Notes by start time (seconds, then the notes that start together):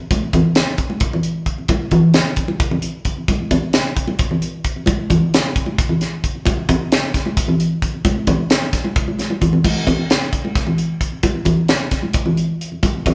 0.00 low conga
0.11 kick, closed hi-hat, high conga
0.23 low conga
0.33 kick, closed hi-hat, low conga
0.45 low conga
0.55 snare, closed hi-hat
0.78 kick, closed hi-hat
0.90 high conga
1.00 kick, closed hi-hat
1.13 low conga
1.23 closed hi-hat
1.46 kick, closed hi-hat
1.58 low conga
1.68 kick, closed hi-hat, high conga, low conga
1.91 kick, closed hi-hat, low conga
2.14 snare, closed hi-hat, low conga
2.26 low conga
2.36 kick, closed hi-hat, low conga
2.48 high conga, low conga
2.60 kick, closed hi-hat
2.71 low conga
2.82 closed hi-hat
3.05 kick, closed hi-hat, low conga
3.17 low conga
3.28 kick, closed hi-hat, high conga
3.40 low conga
3.51 kick, closed hi-hat, low conga
3.63 low conga
3.73 snare, closed hi-hat
3.97 kick, closed hi-hat
4.08 high conga
4.19 kick, closed hi-hat
4.31 low conga
4.42 closed hi-hat
4.64 kick, closed hi-hat
4.76 low conga
4.86 kick, closed hi-hat, high conga
4.98 low conga
5.10 kick, closed hi-hat, low conga
5.21 low conga
5.34 snare, closed hi-hat
5.56 kick, closed hi-hat
5.66 high conga
5.78 kick, closed hi-hat
5.89 low conga
6.01 snare, closed hi-hat
6.24 kick, closed hi-hat
6.35 low conga
6.46 kick, closed hi-hat, high conga
6.57 low conga
6.69 kick, closed hi-hat, low conga
6.81 low conga
6.92 snare, closed hi-hat
7.14 kick, snare, closed hi-hat
7.26 high conga
7.37 kick, closed hi-hat
7.48 low conga
7.60 closed hi-hat
7.82 kick, closed hi-hat
7.94 low conga
8.05 kick, closed hi-hat, high conga
8.16 low conga
8.27 kick, closed hi-hat, low conga
8.50 snare, closed hi-hat
8.62 low conga
8.73 kick, snare, closed hi-hat, low conga
8.84 high conga
8.96 kick, closed hi-hat
9.08 high conga
9.19 snare, closed hi-hat, high conga
9.30 high conga
9.41 kick, closed hi-hat, low conga
9.53 low conga
9.64 kick, crash, high conga
9.76 low conga
9.87 kick, closed hi-hat, low conga
9.99 low conga
10.10 snare, closed hi-hat
10.33 kick, closed hi-hat
10.45 high conga
10.55 kick, snare, closed hi-hat
10.67 low conga
10.78 closed hi-hat
11.01 kick, closed hi-hat
11.12 low conga
11.23 kick, closed hi-hat, high conga
11.35 low conga
11.45 kick, closed hi-hat, low conga
11.57 low conga
11.68 snare, closed hi-hat
11.91 kick, snare, closed hi-hat
12.03 high conga
12.13 kick, closed hi-hat
12.26 low conga
12.37 closed hi-hat
12.61 closed hi-hat
12.72 low conga
12.83 kick, closed hi-hat, high conga
12.95 low conga
13.06 kick, closed hi-hat, low conga